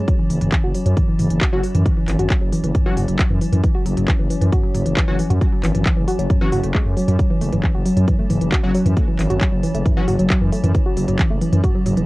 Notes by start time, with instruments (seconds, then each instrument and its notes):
0.08 synth drone F#3 C#4, synth arpeggio sound F#3, kick, closed hi-hat
0.19 synth arpeggio sound E3
0.30 fm bass F#1, synth arpeggio sound E3, open hi-hat
0.41 fm bass F#1, synth arpeggio sound E3, closed hi-hat, mid tom
0.52 synth arpeggio sound E3, kick, clap, closed hi-hat
0.64 fm bass F#1, synth arpeggio sound F#4
0.75 synth arpeggio sound F#3, open hi-hat
0.86 fm bass F#2, synth arpeggio sound F#3, closed hi-hat
0.97 synth arpeggio sound E3, kick, closed hi-hat, mid tom
1.08 synth arpeggio sound E3
1.19 fm bass F#1, synth arpeggio sound E3, mid tom, open hi-hat
1.30 fm bass F#1, synth arpeggio sound E3, closed hi-hat
1.41 synth arpeggio sound F#4, kick, clap, closed hi-hat
1.52 fm bass F#1, synth arpeggio sound F#3, synth stab F#3 C#4 F#4
1.63 synth arpeggio sound F#3, open hi-hat
1.75 fm bass F#2, synth arpeggio sound E3, closed hi-hat, mid tom
1.86 synth arpeggio sound E3, kick, closed hi-hat
1.97 synth arpeggio sound E3
2.08 fm bass G#1, synth arpeggio sound E3, clap, open hi-hat
2.19 fm bass G#1, synth arpeggio sound F#4, closed hi-hat, mid tom
2.30 synth arpeggio sound F#3, kick, clap, closed hi-hat
2.41 fm bass F#1, synth arpeggio sound F#3
2.52 synth arpeggio sound E3, open hi-hat
2.64 fm bass F#1, synth arpeggio sound E3, closed hi-hat
2.75 synth arpeggio sound E3, kick, closed hi-hat, mid tom
2.86 synth arpeggio sound E3, synth stab F#3 C#4 F#4
2.97 fm bass F#1, synth arpeggio sound F#4, mid tom, open hi-hat
3.08 fm bass F#1, synth arpeggio sound F#3, closed hi-hat
3.19 synth arpeggio sound F#3, kick, clap, closed hi-hat
3.30 fm bass F#2, synth arpeggio sound E3
3.41 synth arpeggio sound E3, open hi-hat
3.52 fm bass F#2, synth arpeggio sound E3, closed hi-hat, mid tom
3.63 synth arpeggio sound E3, kick, closed hi-hat
3.75 synth arpeggio sound F#4
3.86 fm bass F#1, synth arpeggio sound F#3, open hi-hat
3.97 fm bass F#1, synth arpeggio sound F#3, closed hi-hat, mid tom
4.08 synth arpeggio sound E3, kick, clap, closed hi-hat
4.19 fm bass F#1, synth arpeggio sound E3
4.30 synth arpeggio sound E3, open hi-hat
4.41 fm bass F#2, synth arpeggio sound E3, closed hi-hat
4.52 synth arpeggio sound F#4, kick, closed hi-hat, mid tom
4.64 synth arpeggio sound F#3
4.75 fm bass F#1, synth arpeggio sound F#3, mid tom, open hi-hat
4.86 fm bass F#1, synth arpeggio sound E3, closed hi-hat
4.97 synth arpeggio sound E3, kick, clap, closed hi-hat
5.08 fm bass F#1, synth arpeggio sound E3, synth stab F#3 C#4 F#4
5.19 synth arpeggio sound E3, open hi-hat
5.30 fm bass F#2, synth arpeggio sound F#4, closed hi-hat, mid tom
5.41 synth arpeggio sound F#3, kick, closed hi-hat
5.53 synth arpeggio sound F#3
5.64 fm bass G#1, synth arpeggio sound E3, clap, open hi-hat
5.75 fm bass G#1, synth arpeggio sound E3, closed hi-hat, mid tom
5.86 synth arpeggio sound E3, kick, clap, closed hi-hat
5.97 fm bass F#1, synth arpeggio sound E3
6.08 synth arpeggio sound F#4, open hi-hat
6.19 fm bass F#1, synth arpeggio sound F#3, closed hi-hat
6.30 synth arpeggio sound F#3, kick, closed hi-hat, mid tom
6.41 synth arpeggio sound E3, synth stab F#3 C#4 F#4
6.52 fm bass F#1, synth arpeggio sound F#4, mid tom, open hi-hat
6.64 fm bass F#1, synth arpeggio sound A3, closed hi-hat
6.75 synth arpeggio sound G#3, kick, clap, closed hi-hat
6.86 fm bass F#2, synth arpeggio sound A3
6.97 synth arpeggio sound F#3, open hi-hat
7.08 fm bass F#2, synth arpeggio sound F#3, closed hi-hat, mid tom
7.19 synth arpeggio sound F#3, kick, closed hi-hat
7.30 synth arpeggio sound E3
7.41 fm bass F#1, synth arpeggio sound A3, open hi-hat
7.53 fm bass F#1, synth arpeggio sound E3, closed hi-hat, mid tom
7.64 synth arpeggio sound E3, kick, clap, closed hi-hat
7.75 fm bass F#1, synth arpeggio sound F#4
7.86 synth arpeggio sound F#3, open hi-hat
7.97 fm bass F#2, synth arpeggio sound F#3, closed hi-hat
8.08 synth arpeggio sound E3, kick, closed hi-hat, mid tom
8.19 synth arpeggio sound A3
8.30 fm bass F#1, synth arpeggio sound E3, mid tom, open hi-hat
8.41 fm bass F#1, synth arpeggio sound E3, closed hi-hat
8.52 synth arpeggio sound F#4, kick, clap, closed hi-hat
8.64 fm bass F#1, synth arpeggio sound F#3, synth stab F#3 C#4 F#4
8.75 synth arpeggio sound F#3, open hi-hat
8.86 fm bass F#2, synth arpeggio sound E3, closed hi-hat, mid tom
8.97 synth arpeggio sound A3, kick, closed hi-hat
9.08 synth arpeggio sound E3
9.19 fm bass G#1, synth arpeggio sound E3, clap, open hi-hat
9.30 fm bass G#1, synth arpeggio sound F#4, closed hi-hat, mid tom
9.41 synth arpeggio sound F#3, kick, clap, closed hi-hat
9.53 fm bass F#1, synth arpeggio sound F#3
9.64 synth arpeggio sound E3, open hi-hat
9.75 fm bass F#1, synth arpeggio sound A3, closed hi-hat
9.86 synth arpeggio sound E3, kick, closed hi-hat, mid tom
9.97 synth arpeggio sound E3, synth stab F#3 C#4 F#4
10.08 fm bass F#1, synth arpeggio sound F#4, mid tom, open hi-hat
10.19 fm bass F#1, synth arpeggio sound F#3, closed hi-hat
10.30 synth arpeggio sound F#3, kick, clap, closed hi-hat
10.41 fm bass F#2, synth arpeggio sound E3
10.52 synth arpeggio sound A3, open hi-hat
10.64 fm bass F#2, synth arpeggio sound E3, closed hi-hat, mid tom
10.75 synth arpeggio sound E3, kick, closed hi-hat
10.86 synth arpeggio sound F#4
10.97 fm bass F#1, synth arpeggio sound F#3, open hi-hat
11.08 fm bass F#1, synth arpeggio sound F#3, closed hi-hat, mid tom
11.19 synth arpeggio sound E3, kick, clap, closed hi-hat
11.30 fm bass F#1, synth arpeggio sound A3
11.41 synth arpeggio sound E3, open hi-hat
11.52 fm bass F#2, synth arpeggio sound E3, closed hi-hat
11.64 synth arpeggio sound F#4, kick, closed hi-hat, mid tom
11.75 synth arpeggio sound F#3
11.86 fm bass F#1, synth arpeggio sound F#3, mid tom, open hi-hat
11.97 fm bass F#1, synth arpeggio sound E3, closed hi-hat